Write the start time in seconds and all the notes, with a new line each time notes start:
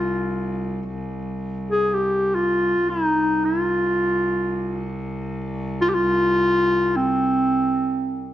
Already playing: C2 F4
1.71 G#4
1.94 G4
2.35 F4
2.82 C2
2.89 D#4
3.45 F4
5.81 F4
5.89 G4
5.95 F4
6.96 C4